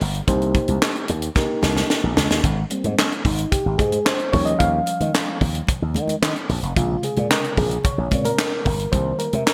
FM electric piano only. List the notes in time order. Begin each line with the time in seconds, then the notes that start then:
0.27 A#3 D#4 G4 C5
1.36 A#3 D#4 G4 A#4
2.71 G3 A#3 C4
3.25 D#4
3.52 G4
3.78 G#4
4.05 C5
4.32 F3 G3 C#4 C#5
4.45 D#5
4.59 F5
6.76 C3 C#3 G#3 F4
7.04 G#4
7.31 A#4
7.57 G#4
7.84 C#5
8.11 C#3 G#3 C4
8.25 A#4
8.65 A#4
8.91 D#3 G3 A#3 C5
9.19 A#4
9.46 A#4